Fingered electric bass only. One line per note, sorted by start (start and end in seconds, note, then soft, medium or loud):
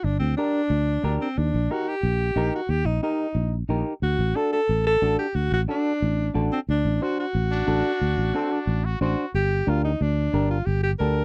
0.04 0.17 G1 medium
0.20 0.34 D2 medium
0.70 0.97 D2 loud
1.04 1.17 D2 medium
1.38 1.51 D#2 medium
1.54 1.67 A#1 medium
2.03 2.30 A#1 medium
2.36 2.49 A#1 medium
2.69 2.83 D#2 medium
2.85 2.99 A#1 medium
3.35 3.62 A#1 medium
3.69 3.82 A#1 medium
4.02 4.16 D2 medium
4.19 4.32 A1 medium
4.69 4.96 A1 medium
5.02 5.15 A1 medium
5.35 5.48 D2 medium
5.52 5.65 A1 medium
6.02 6.29 A1 medium
6.35 6.49 A1 medium
6.68 6.82 D2 medium
6.85 6.98 A1 medium
7.35 7.61 A1 medium
7.68 7.81 A1 medium
8.01 8.15 D2 medium
8.17 8.31 A1 medium
8.67 8.94 A1 loud
9.01 9.14 A1 medium
9.34 9.61 G1 medium
9.67 9.94 D2 medium
10.01 10.27 D2 medium
10.33 10.60 G1 medium
10.67 10.93 G1 medium
11.00 11.25 D2 medium